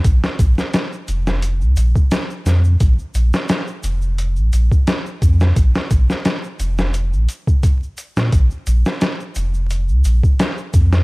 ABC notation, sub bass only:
X:1
M:4/4
L:1/16
Q:"Swing 16ths" 1/4=87
K:Bbm
V:1 name="Sub bass" clef=bass
B,,, z B,,, z3 F,,,3 D,, B,,, z3 F,,2 | B,,, z B,,, z3 F,,,3 B,,, B,,, z3 F,,2 | B,,, z B,,, z3 F,,,3 B,,, z4 z B,, | B,,, z B,,, z3 F,,,3 D,, B,,, z3 F,,2 |]